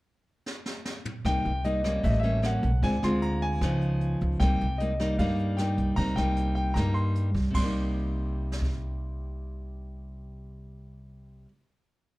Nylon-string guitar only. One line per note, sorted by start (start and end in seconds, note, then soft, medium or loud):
1.25 2.02 C3 medium
1.25 1.51 G3 soft
1.25 1.51 A#3 soft
1.25 1.51 D#4 medium
1.64 1.81 G3 medium
1.64 1.81 A#3 soft
1.64 1.81 D#4 soft
1.84 2.20 G3 medium
1.84 2.21 A#3 medium
1.84 2.21 C#4 medium
2.03 2.80 A2 medium
2.23 2.40 G3 medium
2.23 2.40 A#3 medium
2.23 2.40 C#4 medium
2.42 2.69 G3 soft
2.42 2.70 A#3 medium
2.42 2.70 C#4 medium
2.83 3.60 D3 soft
2.83 2.95 G#3 soft
2.83 2.95 C4 soft
2.83 2.95 F4 soft
3.03 3.59 G#3 medium
3.03 3.59 C4 medium
3.03 3.59 F4 medium
3.63 4.39 C#3 medium
3.63 4.38 F3 medium
3.63 4.38 B3 medium
3.63 4.38 D#4 medium
4.41 5.17 C3 soft
4.41 4.66 G3 medium
4.41 4.66 A#3 medium
4.41 4.66 D#4 medium
4.80 4.91 G3 soft
4.80 4.92 A#3 medium
4.80 4.92 D#4 medium
5.00 5.16 G3 medium
5.00 5.16 A#3 medium
5.00 5.16 D#4 medium
5.19 5.96 G2 medium
5.19 5.55 G3 medium
5.19 5.55 A#3 medium
5.19 5.56 D#4 medium
5.59 5.95 G3 medium
5.59 5.95 A#3 soft
5.59 5.95 D#4 medium
5.98 6.74 C3 medium
5.98 6.14 G3 medium
5.98 6.14 A#3 medium
5.98 6.15 D#4 medium
6.17 6.73 G3 medium
6.17 6.73 A#3 medium
6.17 6.73 D#4 medium
6.76 7.52 G2 medium
6.76 7.29 G3 medium
6.76 7.29 A#3 medium
6.76 7.29 D#4 medium
7.50 11.45 C3 medium
7.56 11.51 G3 medium
7.61 11.56 A#3 medium
7.66 11.60 D#4 medium